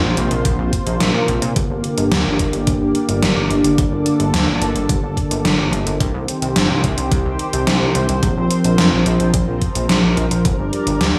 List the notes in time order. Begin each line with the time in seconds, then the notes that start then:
Already playing: C3 A#3 F4 C5
0.03 A#1
0.17 A#1, closed hi-hat
0.31 A#1, closed hi-hat
0.45 A#1, kick, closed hi-hat
0.59 A#1
0.73 kick, closed hi-hat
0.87 A#1, closed hi-hat
1.00 A#1, snare, closed hi-hat
1.14 A#2
1.28 A#1, closed hi-hat
1.42 A#2, closed hi-hat
1.56 G1 D3 G4 D5, kick, closed hi-hat
1.70 G1
1.84 closed hi-hat
1.98 G1, closed hi-hat
2.12 D2, snare, closed hi-hat
2.25 G1
2.39 G1, kick, closed hi-hat
2.53 G1, closed hi-hat
2.67 G1, kick, closed hi-hat
2.81 G1
2.95 closed hi-hat
3.09 G1, closed hi-hat
3.22 G1, snare, closed hi-hat
3.36 G1
3.50 G1, closed hi-hat
3.64 G1, closed hi-hat
3.78 G1 A4, kick, closed hi-hat
3.92 G1
4.06 closed hi-hat
4.20 G1, closed hi-hat
4.33 D2, snare, closed hi-hat
4.48 G1
4.61 G1, closed hi-hat
4.75 G1, closed hi-hat
4.89 G1, kick, closed hi-hat
5.03 G1
5.17 kick, closed hi-hat
5.31 G1, closed hi-hat
5.45 G1, snare, closed hi-hat
5.59 G1
5.72 G1, closed hi-hat
5.86 G1, closed hi-hat
6.00 C2 D#3 C4 G4 C5, kick, closed hi-hat
6.14 C2
6.28 closed hi-hat
6.42 C2, closed hi-hat
6.56 G1, snare, closed hi-hat
6.70 C2
6.84 C2, kick, closed hi-hat
6.98 C2, closed hi-hat
7.12 C2, kick, closed hi-hat
7.26 C2
7.39 closed hi-hat
7.53 C2, closed hi-hat
7.67 C2, snare, closed hi-hat
7.81 C2
7.95 C2, closed hi-hat
8.09 C2, closed hi-hat
8.23 A#1 F3 A#4, kick, closed hi-hat
8.37 A#1
8.51 closed hi-hat
8.64 A#1, closed hi-hat
8.78 F2, snare, closed hi-hat
8.92 A#1
9.06 A#1, closed hi-hat
9.20 A#1, closed hi-hat
9.34 A#1, kick, closed hi-hat
9.48 A#1
9.62 kick, closed hi-hat
9.75 A#1, closed hi-hat
9.89 A#1, snare, closed hi-hat
10.03 A#1
10.17 A#1, closed hi-hat
10.31 A#1, closed hi-hat
10.45 G1 G3 D4 D5, kick, closed hi-hat
10.59 G1
10.73 closed hi-hat
10.87 G1, closed hi-hat
11.01 D2, snare, closed hi-hat
11.15 G1